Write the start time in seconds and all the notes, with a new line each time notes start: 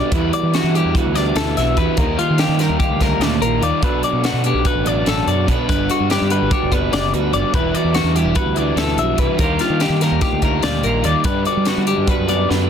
Already playing: G2 D3 G3 B3 D4 F#4 B4 D5
0.11 E2 E3 G3 B3 E4 B4, kick, closed hi-hat
0.33 F#4 D5, closed hi-hat
0.43 E3
0.53 E3 G3 B3 D4 E4 F#4, snare, closed hi-hat
0.64 E3
0.74 G3 B3 E4 G4, closed hi-hat
0.85 E2
0.95 F#4 B4, kick, closed hi-hat
1.06 D2
1.14 G3 B3 D4 E4 D5, snare, closed hi-hat
1.36 D2 B2 E3 G3 B3 E4 A4, snare, closed hi-hat
1.57 B1 F#4 E5, snare, closed hi-hat
1.77 E2 E3 G3 B3 E4 B4, kick, closed hi-hat
1.97 D#2 D#3 G3 A#3 D#4 A#4, kick, closed hi-hat
2.19 F4, closed hi-hat
2.30 D#3
2.38 D#3 G3 A#3 D#4 G4, snare, closed hi-hat
2.49 D#3
2.58 G3 A#3 D#4 A#4, snare, closed hi-hat
2.69 D#2
2.80 F4 G4, kick, closed hi-hat
2.90 D2
3.01 G3 A#3 D#4 A#4, kick, snare, closed hi-hat
3.20 D2 A#2 D#3 G3 A#3 D#4 D5, snare, closed hi-hat
3.41 A#1 F4 A#4, closed hi-hat
3.60 D#2 D#3 G3 A#3 D#4 D5, closed hi-hat
3.82 B1 B2 F#3 B3 D4 F#4 A4 B4, kick, closed hi-hat
4.03 F#4 D5, closed hi-hat
4.13 B2
4.23 B2 F#3 B3 D4 F#4, snare, closed hi-hat
4.33 B2
4.44 F#3 B3 D4 G4, closed hi-hat
4.54 B1
4.65 F#4 B4, kick, closed hi-hat
4.75 A1
4.84 F#3 B3 D4 D5, closed hi-hat
4.89 D4
5.05 A1 B2 F#3 B3 D4 A4, snare, closed hi-hat
5.27 F#2 F#4 D5, closed hi-hat
5.46 B1 B2 F#3 B3 D4 B4, kick, closed hi-hat
5.68 G1 G2 D3 G3 B3 D4 B4, kick, closed hi-hat
5.90 F#4, closed hi-hat
6.00 G2
6.09 G2 D3 G3 B3 D4 G4, snare, closed hi-hat
6.21 G2
6.29 G3 B3 D4 B4, closed hi-hat
6.42 G1
6.51 F#4 G4, kick, closed hi-hat
6.63 F#1
6.71 G3 B3 D4 B4, kick, closed hi-hat
6.75 B3
6.91 F#1 D3 G3 B3 D4 D5, snare, closed hi-hat
7.13 D2 F#4 B4, closed hi-hat
7.31 F#1 G2 D3 G3 B3 D4 D5, closed hi-hat
7.53 E1 E3 G3 B3 E4 B4, kick, closed hi-hat
7.75 F#4 D5, closed hi-hat
7.84 E2
7.93 E3 G3 B3 D4 E4 F#4, snare, closed hi-hat
8.04 E2
8.14 G3 B3 E4 G4, closed hi-hat
8.25 E1
8.35 F#4 B4, kick, closed hi-hat
8.46 D2
8.54 G3 B3 E4 D5, closed hi-hat
8.60 D4
8.75 D2 E3 G3 B3 E4 A4, snare, closed hi-hat
8.81 B2
8.97 B1 F#4 E5, closed hi-hat
9.16 C2 E3 G3 B3 E4 B4, kick, closed hi-hat
9.21 E3
9.36 D#2 D#3 G3 A#3 D#4, kick, closed hi-hat
9.40 G3 F4 G4 A#4
9.59 F4, snare, closed hi-hat
9.63 F4
9.70 D#3
9.79 D#3 G3 A#3 D#4 G4, snare, closed hi-hat
9.90 D#3
10.00 G3 A#3 D#4 A#4, snare, closed hi-hat
10.11 D#2
10.21 F4 G4, kick, snare, closed hi-hat
10.33 D2
10.41 G3 A#3 D#4 A#4, kick, closed hi-hat
10.62 D2 A#2 D#3 G3 A#3 D#4 D5, snare, closed hi-hat
10.83 A#1 F4 A#4, closed hi-hat
11.02 D#2 D#3 G3 A#3 D#4 D5, closed hi-hat
11.07 D#3
11.24 G2 D3 G3 B3 D4 B4, kick, closed hi-hat
11.45 F#4 D5, closed hi-hat
11.57 G3
11.65 G2 D3 G3 B3 D4 F#4, snare, closed hi-hat
11.77 G3
11.87 G3 B3 D4 G4, closed hi-hat
11.98 G2
12.07 F#4 B4, kick, closed hi-hat
12.18 F#2
12.27 G3 B3 D4 D5, closed hi-hat
12.49 F#2 D3 G3 B3 D4 B4, snare